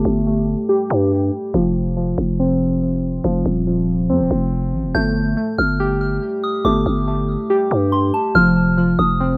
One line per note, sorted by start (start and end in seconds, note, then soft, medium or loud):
0.00 0.25 A3 loud
0.00 0.68 G4 medium
0.05 0.56 G1 loud
0.27 1.54 A3 medium
0.69 1.54 G4 loud
0.90 1.31 G2 loud
1.54 2.15 F1 loud
1.54 1.96 F3 loud
1.97 3.23 F3 medium
2.18 3.20 F1 loud
2.40 4.08 C4 loud
3.24 3.45 F1 loud
3.24 3.66 F3 loud
3.46 4.11 D#1 loud
3.67 4.95 F3 medium
4.10 4.22 F2 loud
4.10 4.95 C4 loud
4.20 4.30 D#1 loud
4.31 4.75 F1 loud
4.73 4.85 A1 loud
4.84 4.94 F1 loud
4.94 5.35 G1 loud
4.94 5.36 A3 loud
4.94 5.55 G6 loud
5.37 6.64 A3 medium
5.58 6.20 G1 loud
5.58 5.79 F6 medium
5.80 7.49 G4 medium
6.44 6.64 D#6 medium
6.65 6.85 G1 loud
6.65 7.06 A3 loud
6.65 7.88 D6 medium
6.86 7.37 G1 loud
7.08 8.35 A3 medium
7.50 8.35 G4 loud
7.71 8.12 G2 loud
7.92 8.13 C6 medium
8.14 8.34 A5 medium
8.35 8.96 F1 loud
8.35 8.76 F3 loud
8.35 8.95 F6 loud
8.78 9.37 F3 medium
8.99 9.37 F1 loud
8.99 9.19 D#6 medium
9.20 9.37 C4 medium